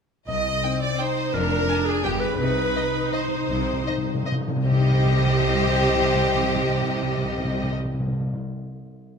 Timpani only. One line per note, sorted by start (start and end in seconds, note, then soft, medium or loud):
0.28 0.78 C3 medium
2.78 2.85 C3 soft
2.87 2.93 C3 soft
2.94 3.01 C3 soft
3.03 3.10 C3 soft
3.11 3.18 C3 soft
3.19 3.26 C3 soft
3.35 3.41 C3 soft
3.42 3.48 C3 soft
3.50 3.56 C3 medium
3.65 3.72 C3 medium
3.73 3.80 C3 medium
3.81 3.88 C3 medium
3.90 3.97 C3 medium
3.98 4.05 C3 medium
4.06 4.13 C3 medium
4.14 4.22 C3 medium
4.23 4.31 C3 medium
4.32 4.39 C3 medium
4.40 4.47 C3 medium
4.48 4.55 C3 medium
4.56 4.63 C3 medium
4.64 4.71 C3 medium
4.71 4.78 C3 medium
4.78 4.85 C3 medium
4.85 4.91 C3 medium
4.91 4.98 C3 medium
4.99 5.06 C3 medium
5.06 5.12 C3 medium
5.13 5.19 C3 medium
5.19 5.26 C3 medium
5.26 5.33 C3 medium
5.33 5.39 C3 medium
5.39 5.46 C3 medium
5.46 5.53 C3 medium
5.54 5.61 C3 medium
5.61 5.67 C3 medium
5.67 5.74 C3 medium
5.74 5.80 C3 medium
5.80 5.87 C3 medium
5.88 5.95 C3 medium
5.95 6.01 C3 medium
6.02 6.08 C3 medium
6.09 6.15 C3 medium
6.15 6.22 C3 medium
6.22 6.28 C3 medium
6.28 6.35 C3 medium
6.35 6.42 C3 medium
6.42 6.49 C3 medium
6.49 6.56 C3 medium
6.56 6.62 C3 medium
6.62 6.69 C3 medium
6.69 6.76 C3 medium
6.76 6.82 C3 medium
6.82 6.89 C3 medium
6.89 6.96 C3 medium
6.96 7.03 C3 medium
7.03 7.10 C3 medium
7.10 7.17 C3 medium
7.17 7.24 C3 medium
7.24 7.31 C3 medium
7.31 7.37 C3 medium
7.38 7.45 C3 medium
7.45 7.51 C3 medium
7.51 7.57 C3 medium
7.57 7.64 C3 medium
7.64 7.70 C3 medium
7.71 7.78 C3 medium
7.78 7.85 C3 medium
7.85 7.92 C3 medium
7.93 7.99 C3 medium
8.00 8.06 C3 medium
8.06 8.13 C3 medium
8.13 8.19 C3 medium
8.19 8.26 C3 medium
8.26 8.33 C3 medium
8.34 8.40 C3 medium